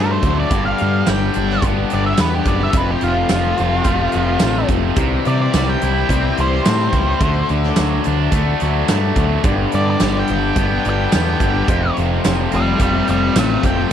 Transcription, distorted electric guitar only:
Already playing: F#3 A3 D4
0.25 F#3
0.53 G2
0.80 D3
1.09 G3
1.36 D4
1.64 B3
1.92 G3
2.19 B3
2.47 G3
2.76 F2
3.04 C3
3.32 F3
3.60 C4
3.86 A3
4.14 F3
4.44 A3
4.70 F3
4.98 C3
5.27 C3
5.54 G3
5.83 E4
6.12 C4
6.40 G3
6.67 C4
6.96 G3
7.23 D3
7.51 D3
7.79 F#3
8.07 D4
8.35 A3
8.63 F#3
8.92 A3
9.19 F#3
9.47 G2
9.73 D3
10.02 G3
10.30 D4
10.58 B3
10.86 G3
11.14 B3
11.42 G3
11.70 F2
11.98 C3
12.25 F3
12.52 C4
12.81 A3
13.09 F3
13.35 A3
13.64 F3

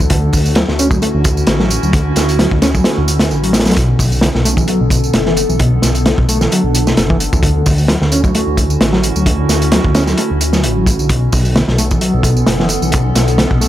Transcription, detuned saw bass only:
0.00 D2
0.33 D2
0.68 D2
1.02 D2
1.14 D2
1.48 A1
1.83 D2
2.16 D2
2.51 D2
2.97 D2
3.31 A1
3.66 B1
3.99 B1
4.35 B1
4.68 B1
4.80 B1
5.14 F#1
5.49 B1
5.83 B1
6.18 B1
6.64 B1
6.97 F#1
7.33 D2
7.66 D2
8.01 D2
8.34 D2
8.47 D2
8.80 A1
9.16 D2
9.49 D2
9.84 D2
10.30 D2
10.64 A1
10.99 B1
11.33 B1
11.68 B1
12.01 B1
12.13 B1
12.47 F#1
12.82 B1
13.15 B1
13.51 B1

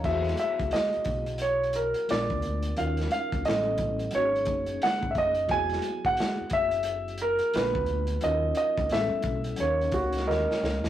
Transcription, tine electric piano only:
Already playing: F5
0.03 F#3 B3 E4 F#4
0.08 G#4
2.09 G#3 B3 D4 F4 A#4
2.77 F#3 C#4 D#4 F4 A#4
3.45 G3 B3 C#4 E4 A4
4.12 F#3 A#3 C#4
4.16 D#4 F#4
4.24 G#4
5.48 F#3 B3 F#4
5.53 E4 G#4
7.54 G#3 B3 D4 F4 A4
7.63 A#3
8.22 F#3 C#4 D#4 F4 A#4
8.91 G3 B3 C#4 E4 G#4
9.00 A4
9.58 F#3 C#4 D#4 F5
9.63 A#4

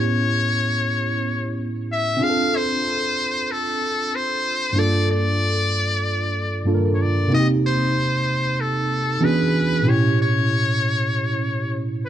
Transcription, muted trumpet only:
0.00 C#5
1.92 E5
2.23 F5
2.56 C5
3.52 A4
4.16 C5
4.79 D5
5.11 D5
6.95 C#5
7.02 D5
7.34 D#5
7.66 C5
8.60 A4
9.24 B4
9.89 C#5
10.22 C#5
12.05 B4

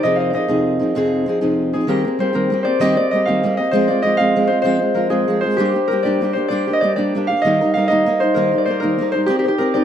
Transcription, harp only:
Already playing: G4 A#4 C5
0.03 D#5
0.16 F5
0.20 D#5
0.30 D5
0.35 D#5
1.74 G#4
1.89 A#4
2.20 C5
2.35 A#4
2.63 C5 D5
2.81 D#5
2.97 D5
3.11 D#5
3.25 F5
3.57 D#5
3.71 C5
3.88 D5
4.02 D#5
4.17 F5
4.47 C5
4.62 C5
4.95 A#4
5.10 G#4
5.41 C5
5.57 G4
5.88 A#4
6.03 D5
6.33 C5
6.48 D5
6.73 D#5
6.81 D5
6.96 D5
7.27 F5
7.42 D#5
7.74 F5
7.88 D#5
8.20 C5
8.34 A#4
8.58 D5
8.65 C5
8.80 A#4
9.12 C5
9.26 G4
9.39 G4
9.48 G4
9.58 A#4
9.74 D5

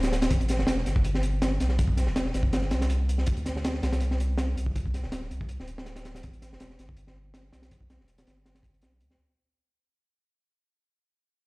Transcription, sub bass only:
Already playing: D1
0.31 A1
0.59 E1
0.86 G1
1.60 B1
2.07 E1
2.34 G1
2.71 C2
3.28 D2
3.83 C2
4.57 C2
5.04 D1
5.31 C2
5.59 D1
6.24 A1
6.51 E1
6.79 G1
7.53 B1
8.00 E1
8.27 G1
8.82 B1
9.01 D2

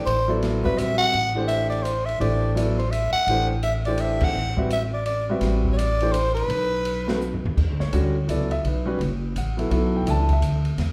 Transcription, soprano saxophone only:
0.06 C5
0.65 B4
0.78 E5
0.98 F#5
1.48 E5
1.70 D5
1.83 C5
2.05 E5
2.21 D5
2.79 C5
2.91 E5
3.13 F#5
3.63 E5
3.86 D5
4.00 E5
4.24 F#5
4.73 E5
4.94 D5
5.06 D5
5.73 C#5
5.77 D5
6.12 C5
6.35 B4

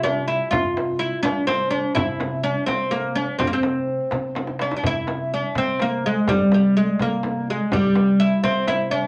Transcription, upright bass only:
Already playing: C3
0.52 C3
1.25 C3
1.96 C3
2.68 C3
3.40 C3
4.12 C3
4.84 C3
5.55 C3
6.28 C3
7.00 C3
7.72 C3
8.44 C3

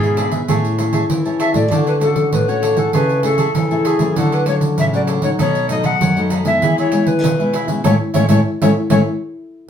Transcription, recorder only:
Already playing: G#4
1.40 E5
1.55 D5
1.87 B4
2.02 A4
2.33 B4
2.49 C#5
2.78 A4
2.95 B4
3.24 A4
3.86 G#4
4.17 A4
4.34 B4
4.48 C#5
4.79 E5
4.95 D5
5.24 C#5
5.41 C#5
5.70 D#5
5.86 F#5
6.46 E5
6.79 C#5
7.07 B4
7.85 C#5
8.15 C#5
8.30 C#5
8.62 C#5
8.90 C#5

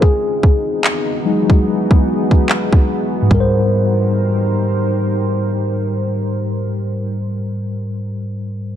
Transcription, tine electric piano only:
0.02 G#4
1.26 F#3 G#3 D#4
3.22 G#2
3.29 G3
3.34 A#4
3.40 C5

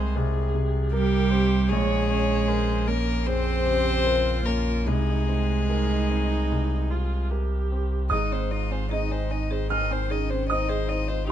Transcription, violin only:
Already playing: G#4
0.93 G4
1.69 G#4
2.88 A#4
3.26 C5
4.45 A#4
4.87 G#4
8.10 D#5
8.32 C5
8.51 D#5
8.71 C5
8.92 D#5
9.12 C5
9.31 D#5
9.52 C5
9.72 D#5
9.92 C5
10.11 D#5
10.30 C5
10.50 D#5
10.69 C5
10.89 D#5
11.07 C5
11.28 G4

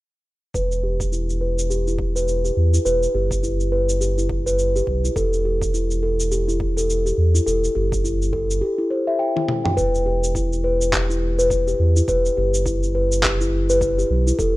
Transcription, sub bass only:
0.54 E1
2.57 E2
2.85 E1
3.14 F#1
4.87 B1
5.16 E1
7.18 E2
7.47 E1
7.76 F#1
9.77 E1
11.79 E2
12.08 E1
12.37 F#1
14.10 B1
14.39 E1

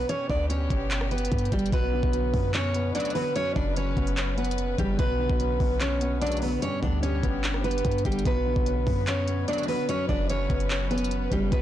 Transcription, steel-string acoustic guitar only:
0.09 C#4 C#5
0.30 D4 D5
0.50 C#4 C#5
1.11 B3 B4
1.52 G3 G4
1.73 B3 B4
2.54 C#4 C#5
2.95 D4 D5
3.15 B3 B4
3.36 C#4 C#5
3.56 D4 D5
3.77 C#4 C#5
4.38 B3 B4
4.79 G3 G4
4.99 B3 B4
5.81 C#4 C#5
6.21 D4 D5
6.42 B3 B4
6.62 C#4 C#5
6.83 D4 D5
7.03 C#4 C#5
7.64 B3 B4
8.06 G3 G4
8.26 B3 B4
9.08 C#4 C#5
9.48 D4 D5
9.68 B3 B4
9.89 C#4 C#5
10.09 D4 D5
10.30 C#4 C#5
10.91 B3 B4
11.32 G3 G4
11.52 B3 B4

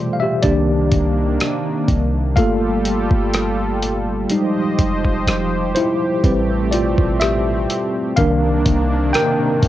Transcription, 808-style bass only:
0.44 C2
0.92 C2
1.88 C2
2.37 G1
3.11 G1
4.79 F1
5.27 F1
6.24 A1
6.98 A1
8.18 C2
8.66 C2
9.63 C2

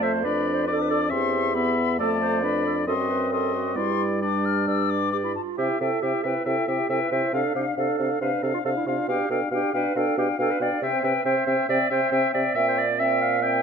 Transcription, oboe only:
0.02 E5
0.24 D5
0.68 D5
0.90 D5
1.10 E5
1.55 E5
1.99 D5
2.87 D#5
3.33 D#5
3.77 D5
4.22 D5
4.68 D5
5.59 E5
5.81 E5
6.02 E5
6.24 E5
6.45 E5
6.68 E5
6.90 E5
7.12 E5
7.34 F5
7.55 F5
7.77 F5
7.99 F5
8.21 F5
8.44 F5
8.66 F5
8.88 F5
9.09 F5
9.31 F5
9.52 F5
9.74 F5
9.96 F5
10.18 F5
10.39 F5
10.61 F5
10.83 E5
11.04 E5
11.25 E5
11.47 E5
11.68 E5
11.90 E5
12.12 E5
12.34 E5
12.55 E5
12.99 E5
13.42 E5

